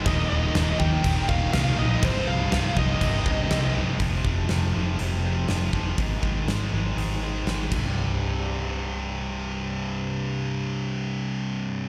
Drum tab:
CC |x-x-x-x-|x-x-x-x-|--------|-------x|
HH |--------|--------|o-o-o-o-|o-o-o-o-|
SD |--o---o-|--o---o-|--o---o-|--o---o-|
BD |o--ooo--|o--ooo--|oo-----o|oo-----o|

CC |--------|--------|
HH |--------|--------|
SD |--------|--------|
BD |--------|--------|